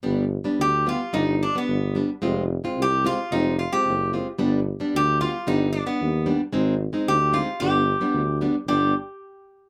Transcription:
<<
  \new Staff \with { instrumentName = "Resonator guitar played with a steel bar" } { \time 2/4 \tempo 4 = 111 r4 g'8 f'8 | ees'8 d'16 b8. r8 | r4 g'8 f'8 | ees'8 f'16 g'8. r8 |
r4 g'8 f'8 | ees'8 d'16 b8. r8 | r4 g'8 f'8 | g'4. r8 |
g'8 r4. | }
  \new Staff \with { instrumentName = "Nylon-string guitar" } { \time 2/4 <g b d'>8 r16 <g b d'>16 r8 <g b f'>16 r16 | <g b d'>8 r16 <g b d'>16 r8 <g b d'>16 r16 | <aes c' f'>8 r16 <aes c' f'>16 r8 <aes c' f'>16 r16 | <aes c' f'>8 r16 <aes c' f'>16 r8 <aes c' f'>16 r16 |
<g b d'>8 r16 <g b d'>16 r8 <g b f'>16 r16 | <g b d'>8 r16 <g b d'>16 r8 <g b d'>16 r16 | <aes c' ees'>8 r16 <aes c' ees'>16 r8 <aes c' ees'>16 r16 | <g b d'>8 r16 <g b d'>16 r8 <g b d'>16 r16 |
<g b d'>8 r4. | }
  \new Staff \with { instrumentName = "Tuba" } { \clef bass \time 2/4 g,,4 d,4 | g,,4 g,,4 | f,,4 c,4 | f,,4 fis,,4 |
g,,4 d,4 | g,,4 ees,4 | aes,,4 d,4 | g,,4 d,4 |
g,,8 r4. | }
>>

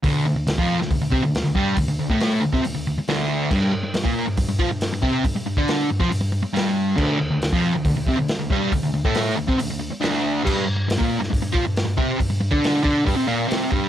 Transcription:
<<
  \new Staff \with { instrumentName = "Distorted electric guitar" } { \clef bass \time 4/4 \key g \major \tempo 4 = 138 <d, d>8 d,16 d,16 d,16 <f, f>8 d,16 d,16 d,16 <c c'>16 d,8 d,16 <g, g>8 | d,16 d,16 d,16 <a, a>8. d,16 <c c'>16 d,16 d,16 d,16 r16 <d, d>4 | <g, g>8 g,16 g,16 g,16 <bes, bes>8 g,16 g,16 g,16 <f f'>16 g,8 g,16 <c c'>8 | g,16 g,16 g,16 <d d'>8. g,16 <f f'>16 g,16 g,16 g,16 r16 <g, g>4 |
<d, d>8 d,16 d,16 d,16 <f, f>8 d,16 d,16 d,16 <c c'>16 d,8 d,16 <g, g>8 | d,16 d,16 d,16 <a, a>8. d,16 <c c'>16 d,16 d,16 d,16 r16 <d, d>4 | <g, g>8 g,16 g,16 g,16 <bes, bes>8 g,16 g,16 g,16 <f f'>16 g,8 g,16 <c c'>8 | g,16 g,16 g,16 <d d'>8. <d d'>8 <g, g>16 <c c'>16 <bes, bes>8 <c c'>8 <g, g>8 | }
  \new DrumStaff \with { instrumentName = "Drums" } \drummode { \time 4/4 <hho bd>4 <hho sn>16 bd8 sn16 <hho bd>8 bd8 <hho sn>8 bd8 | <hho bd>8. bd16 <hho sn>8. <bd sn>16 hho4 <hho sn>4 | <cymc bd>4 <hho sn>16 bd8. <hho bd>8 bd8 <hho sn>8 bd8 | <hho bd>8. bd16 <hho sn>8. <bd sn>16 hho4 <hho sn>4 |
<cymc bd>4 <hho sn>16 bd8. <hho bd>8 bd8 <hho sn>8 bd8 | <hho bd>8. bd16 <hho sn>8. bd16 hho4 <hho sn>4 | <cymc bd>4 <hho sn>16 bd8 sn16 <hho bd>8 bd8 <hho sn>8 bd8 | <hho bd>8. bd16 <hho sn>8 bd8 <hho bd>4 <hho sn>8 bd8 | }
>>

